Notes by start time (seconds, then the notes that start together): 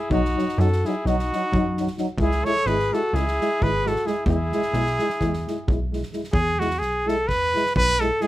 Already playing: E4 G#4
0.10 B1 F#3 D#4 F#4, kick
0.25 snare
0.36 F#3 D#4, snare
0.49 snare
0.58 F#2 F#3 D#4 F#4 A4, snare
0.72 snare
0.85 F#3 D#4 E4 G#4, snare
1.05 B1 F#3 D#4 F#4, snare
1.19 snare
1.32 F#3 D#4, snare
1.52 F#2 F#3 D#4, kick
1.77 F#3 D#4, snare
1.87 snare
1.98 F#3 D#4, snare
2.18 C#2 G#3 E4 G#4, kick
2.31 snare
2.45 G#3 E4 A4 C#5, snare
2.56 snare
2.66 G#1 G#3 E4 G#4 B4, snare
2.79 snare
2.92 G#3 E4 F#4 A4, snare
3.13 C#2 G#3 E4 G#4, snare
3.28 snare
3.41 G#3 E4, snare
3.61 G#1 G#3 E4 G#4 B4, kick
3.85 G#3 E4 F#4 A4, snare
3.96 snare
4.05 G#3 E4 G#4, snare
4.26 E2 G#3 E4 G#4, kick
4.52 G#3 E4, snare
4.62 snare
4.73 B1 G#3 E4, snare
4.86 snare
4.99 G#3 E4, snare
5.09 snare
5.21 E2 G#3 E4, kick, snare
5.33 snare
5.47 G#3 E4, snare
5.68 B1 G#3 E4, kick
5.93 G#3 E4, snare
6.03 snare
6.13 G#3 E4, snare
6.24 snare
6.33 E2 G#4, kick
6.59 G#3 E4 F#4, snare
6.71 snare
6.79 B1 G#4, snare
7.07 G#3 E4 A4, snare
7.28 E2 B4, kick, snare
7.55 G#3 E4, snare
7.66 snare
7.76 B1 B4, kick
7.88 snare
8.00 G#3 E4 A4, snare
8.21 G#3 E4 G#4, snare